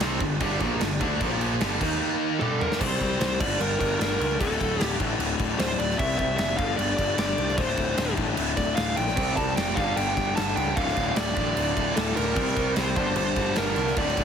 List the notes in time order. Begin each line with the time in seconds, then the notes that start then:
Already playing: G3 D4 A4
0.00 C2 C3 G3 C4, snare, crash
0.20 G1 G2 D3, kick, crash
0.41 G1 G2 D3 G3, kick, crash
0.60 A#1 A#2 F3 A#3, kick, crash
0.81 G1 G2 D3, snare, crash
1.01 D2 D3 A3 D4, kick, crash
1.20 A#1 A#2 F3 A#3 F4 C5, kick, crash
1.41 crash
1.59 G1 G2 D3 G3 D4 A4, snare, crash
1.79 D#2 D#3 A#3 D#4 A#4 F5, kick, crash
2.39 G2 D3 G3 D4 A4, high tom
2.61 A#4, mid tom
2.72 snare
2.79 C2 C3 G3 C4 G4 C5 D5, kick, crash
2.92 snare
3.01 C2, kick, crash
3.20 C2 C5, snare, crash
3.39 G1 G2 D3 G3 D4 D5 A5, kick, crash
3.60 G1 A#4, crash
3.80 G1 A#4, kick, crash
4.00 G1 A#4, snare, crash
4.20 C#2, crash
4.38 D1 D2 A2 D3 A4 E5, kick, crash
4.51 snare
4.60 D1, kick, crash
4.80 D1 G4, snare, crash
5.00 A1, kick, crash
5.19 D1, crash
5.39 D1, kick, crash
5.59 D1 C5, snare, crash
5.78 D1 D5, crash
5.90 snare
5.97 C2 C3 G3 C4 G4 D5 E5, kick, crash
6.10 snare
6.18 C2 E5, kick, crash
6.37 F#1 E5, snare, crash
6.57 G1 G2 D3 G3 D4 A4 F5, kick, crash
6.77 G1 D5, crash
6.97 G1 D5, kick, crash
7.17 G1 D5, snare, crash
7.38 C2, crash
7.48 snare
7.57 D1 D2 A2 D3 C5 E5, kick, crash
7.68 snare
7.77 D1, kick, crash
7.97 D1, snare, crash
8.17 A1, kick, crash
8.37 D1, crash
8.57 D1 D5, kick, crash
8.76 D1 F5, snare, crash
8.97 A#1 G5, crash
9.08 snare
9.16 C2 C3 G3 C4 G4 D5, kick, crash
9.36 C2 A5, kick, crash
9.56 F1 G5, snare, crash
9.75 G1 G2 D3 G3 D4 A4 F5, kick, crash
9.96 G1 G5, crash
10.15 G1 G5, kick, crash
10.36 G1 A5, snare, crash
10.56 C#2 G5, crash
10.75 D1 D2 A2 D3 A4 F5, kick, crash
10.88 snare
10.97 D1, kick, crash
11.16 D1 D5, snare, crash
11.36 A1, kick, crash
11.56 D1, crash
11.77 D1, kick, crash
11.96 D1 A4, snare, crash
12.15 D1 D2 A2 D3 A#4, crash
12.35 C2 C3 G3 C4 G4 D5, kick, crash
12.47 snare
12.57 C2, kick, crash
12.76 C2 C5, snare, crash
12.95 G1 G2 D3 G3 D4 C5 A5, kick, crash
13.16 G1 C5, crash
13.36 G1, kick, crash
13.56 G1 A#4, snare, crash
13.76 C2, crash
13.87 snare
13.96 D1 D2 A2 D3 D5 E5, kick, crash
14.08 snare
14.17 D1, kick, crash